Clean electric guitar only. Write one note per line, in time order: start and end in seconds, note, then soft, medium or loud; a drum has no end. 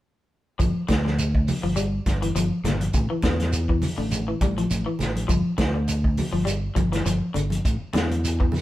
0.59 0.82 F3 medium
0.89 1.01 D3 medium
1.05 1.28 D3 medium
1.63 1.74 F3 medium
1.76 1.99 G3 medium
2.22 2.32 E3 medium
2.36 2.58 F3 medium
2.65 2.88 A#2 medium
3.10 3.20 E3 medium
3.24 3.46 D3 medium
3.69 3.92 E3 medium
3.98 4.21 D3 medium
4.28 4.38 E3 medium
4.42 4.54 G3 medium
4.58 4.80 F3 medium
4.86 5.09 E3 medium
5.28 5.51 F3 medium
5.58 muted clean electric guitar stroke medium
5.74 5.97 D3 medium
6.33 6.43 F3 medium
6.45 6.69 G3 medium
6.75 6.88 F3 medium
6.92 7.03 E3 medium
7.06 7.29 F3 medium
7.34 7.57 D3 medium
7.94 8.17 D3 medium
8.40 8.62 E3 medium